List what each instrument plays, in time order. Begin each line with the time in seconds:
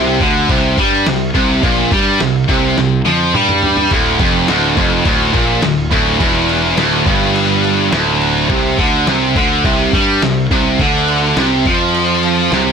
Already playing: picked electric bass C2, distorted electric guitar C3
0.21 picked electric bass D2, distorted electric guitar D3, kick, crash
0.49 picked electric bass C2, distorted electric guitar C3, kick, crash
0.78 picked electric bass G2, distorted electric guitar G3, kick, crash
1.07 picked electric bass C2, distorted electric guitar C3, snare, crash
1.35 picked electric bass C2, distorted electric guitar C3, kick, crash
1.63 picked electric bass A#1, distorted electric guitar A#2, kick, crash
1.92 picked electric bass G2, distorted electric guitar G3, kick, crash
2.20 picked electric bass C2, distorted electric guitar C3, snare, crash
2.49 picked electric bass C2, distorted electric guitar C3, kick, crash
2.78 picked electric bass C2, distorted electric guitar C3, snare
3.06 picked electric bass F2, distorted electric guitar F3, high tom
3.34 picked electric bass G2, distorted electric guitar G3, mid tom
3.49 mid tom
3.63 floor tom
3.77 floor tom
3.91 picked electric bass D1, distorted electric guitar D2, kick, crash
4.19 picked electric bass F1, distorted electric guitar F2, kick, crash
4.48 picked electric bass D1, distorted electric guitar D2, snare, crash
4.77 picked electric bass F1, distorted electric guitar F2, kick, crash
5.05 picked electric bass D1, distorted electric guitar D2, kick, crash
5.34 picked electric bass A#1, distorted electric guitar A#2, kick, crash
5.63 picked electric bass D1, distorted electric guitar D2, snare, crash
5.91 picked electric bass D1, distorted electric guitar D2, kick, crash
6.20 picked electric bass E1, distorted electric guitar E2, kick, crash
6.49 crash
6.77 picked electric bass D1, distorted electric guitar D2, snare, crash
7.06 picked electric bass G1, distorted electric guitar G2, kick, crash
7.36 crash
7.64 crash
7.92 picked electric bass D1, distorted electric guitar D2, snare, crash
8.22 crash
8.49 picked electric bass C2, distorted electric guitar C3, kick, crash
8.79 picked electric bass D2, distorted electric guitar D3, kick, crash
9.07 picked electric bass C2, distorted electric guitar C3, snare, crash
9.36 picked electric bass D2, distorted electric guitar D3, kick, crash
9.65 picked electric bass C2, distorted electric guitar C3, kick, crash
9.93 picked electric bass G2, distorted electric guitar G3, kick, crash
10.22 picked electric bass C2, distorted electric guitar C3, snare, crash
10.51 picked electric bass C2, distorted electric guitar C3, kick, crash
10.79 picked electric bass D2, distorted electric guitar D3, kick, crash
11.08 crash
11.37 picked electric bass C2, distorted electric guitar C3, snare, crash
11.66 picked electric bass F2, distorted electric guitar F3, kick, crash
11.95 crash
12.23 crash
12.52 picked electric bass C2, distorted electric guitar C3, snare